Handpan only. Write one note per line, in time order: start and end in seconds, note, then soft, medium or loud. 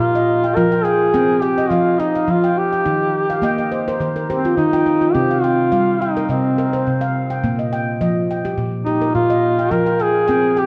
0.00 0.56 A#2 medium
0.00 0.28 A#4 medium
0.15 0.43 D#5 medium
0.44 0.71 G5 medium
0.57 1.01 F3 medium
0.57 0.85 F4 medium
0.72 0.84 G5 soft
0.85 1.13 G5 medium
1.14 1.58 C4 medium
1.14 1.41 G5 medium
1.42 1.86 G5 medium
1.58 1.86 D#5 medium
1.70 2.15 F3 medium
1.70 2.14 F5 medium
2.00 2.28 D#5 medium
2.15 2.57 F5 medium
2.28 2.85 F3 medium
2.44 2.71 G5 medium
2.73 3.01 G5 medium
2.86 3.30 D#3 medium
2.86 3.14 D#4 medium
3.30 3.56 F5 medium
3.42 3.86 A#3 medium
3.42 3.57 D#5 medium
3.42 3.72 G5 medium
3.58 3.85 D#5 medium
3.72 3.87 C5 medium
3.88 4.14 A#4 medium
3.88 4.00 C5 medium
4.00 4.44 D#3 medium
4.00 4.27 C5 medium
4.16 4.42 A#4 medium
4.30 4.56 G4 medium
4.30 4.58 C5 medium
4.45 4.71 F4 medium
4.57 5.15 D#3 medium
4.57 4.84 D#4 medium
4.73 4.99 F4 medium
4.73 5.01 G5 medium
4.86 5.13 D#4 medium
5.01 5.28 F4 medium
5.15 5.59 C3 medium
5.15 5.43 C4 medium
5.31 5.71 F5 medium
5.44 5.87 G5 medium
5.72 6.16 G3 medium
5.72 6.00 F5 medium
6.02 6.45 G5 medium
6.17 6.45 A#4 medium
6.29 6.73 C3 medium
6.29 6.73 D#5 medium
6.58 6.86 A#4 medium
6.73 7.15 C5 medium
6.87 7.44 C3 medium
7.01 7.30 F5 medium
7.30 7.59 G5 medium
7.44 7.87 A#2 medium
7.44 7.72 A#3 medium
7.59 8.00 D#5 soft
7.73 8.16 G5 medium
8.01 8.45 F3 medium
8.01 8.29 D#5 medium
8.31 8.74 G5 medium
8.45 8.73 G4 medium
8.58 9.02 A#2 medium
8.87 9.15 G4 medium
9.01 9.43 A#4 medium
9.15 9.72 A#2 medium
9.30 9.58 D#5 medium
9.59 9.85 G5 medium
9.71 10.15 F3 medium
9.71 10.00 F4 medium
9.86 9.98 G5 medium
10.00 10.26 G5 medium
10.28 10.66 C4 medium
10.28 10.56 G5 medium
10.57 10.66 G5 medium